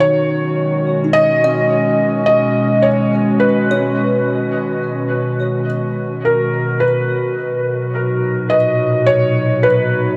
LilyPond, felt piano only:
\new Staff \with { instrumentName = "Felt piano" } { \time 3/4 \key b \major \tempo 4 = 53 cis''4 dis''4 dis''8 cis''8 | b'2 r8 ais'8 | b'4. dis''8 cis''8 b'8 | }